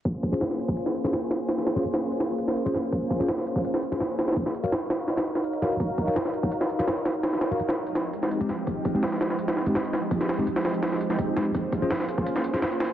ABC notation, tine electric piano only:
X:1
M:4/4
L:1/16
Q:1/4=167
K:Bbm
V:1 name="Tine electric piano"
z3 [DFAc] z6 z [DFAc] z4 | z3 [DFAc] z8 z [DFAc] z2 | z3 [DFAc] z6 z [DFAc] z4 | z3 [GBdf] z8 z2 [GBdf] z |
z3 [GBdf] z6 z [GBdf] z4 | z3 [GBdf] z8 z [A,CE=G] z2 | z3 [A,CE=G] z6 z [A,CEG] z4 | z3 [A,CE=G] z8 z2 [A,CEG] z |
z3 [DFAc] z6 z [DFAc] z4 |]